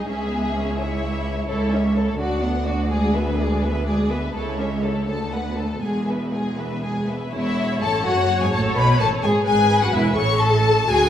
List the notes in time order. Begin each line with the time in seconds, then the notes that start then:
0.07 C#2 C#4 G#4 E5
0.31 B3
0.55 C#4
0.78 E4 C#5 E5
1.48 C#2 E4 A4 C#5
1.71 C#4 C#5 E5
1.95 E4 A4 C#5
2.19 D2 D4 F#4 D5
2.43 B3 D4 F#5
2.67 D4 F#4 D5
2.90 G#3 G#4 D5
3.14 B3 B4 E5
3.39 G#3 G#4 D5
3.63 B3 B4 E5
3.86 G#3 G#4 D5
4.10 B3 B4 E5
4.34 C#2 E4 A4 C#5
4.59 C#4 C#5 E5
4.83 E4 A4 C#5
5.08 D2 A3 A4 A5
5.32 B3 B4 F#5
5.57 A3 A4 A5
5.82 E1 E2 G#3 G#4 G#5
6.07 B3 B4 E5
6.32 G#3 G#4 G#5
6.57 B3 B4 E5
6.83 G#3 G#4 G#5
7.08 B3 B4 E5
7.33 E1 E2 E4 C#5 E5
7.81 A1 A2 A4 A5
8.05 F#1 F#2 F#4 F#5
8.41 G#2 G#4 G#5
8.53 A1 A2 A4 A5
8.76 B1 B2 B4 B5
9.00 A1 A2 A4 A5
9.23 G#1 G#2 G#4 G#5
9.46 G#1 G#2 G#4 B4 G#5
9.82 F#2 F#4 F#5
9.94 E1 E2 E4 E5
10.17 A1 A2 A4 C#5 C#6
10.42 A4 A5
10.89 D2 F#4 G#4 G#5